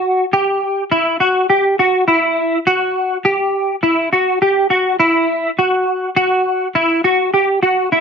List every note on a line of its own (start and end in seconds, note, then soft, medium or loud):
0.00 0.24 F#4 medium
0.33 0.83 G4 medium
0.91 1.16 E4 medium
1.20 1.45 F#4 medium
1.50 1.74 G4 medium
1.79 2.04 F#4 medium
2.08 2.58 E4 medium
2.67 3.17 F#4 medium
3.25 3.75 G4 medium
3.83 4.08 E4 medium
4.13 4.38 F#4 medium
4.42 4.67 G4 medium
4.70 4.95 F#4 medium
5.00 5.50 E4 medium
5.59 6.08 F#4 medium
6.16 6.67 F#4 medium
6.75 7.00 E4 medium
7.04 7.29 F#4 medium
7.34 7.59 G4 medium
7.63 7.88 F#4 medium
7.92 8.01 E4 medium